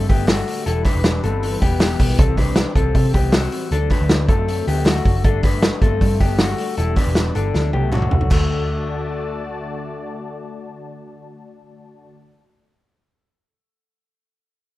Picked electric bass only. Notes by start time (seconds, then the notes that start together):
0.10 G1
0.66 E1
0.95 E1
1.24 G1
1.62 E1
2.00 B1
2.19 C2
2.76 C2
2.95 C3
3.14 C2
3.71 D2
4.01 D2
4.29 F#2
4.67 D2
5.06 F#1
5.25 G1
5.82 G1
6.01 G2
6.21 G1
6.78 E1
7.07 E1
7.36 G1
7.55 D2
7.74 C2
8.12 C2
8.31 D2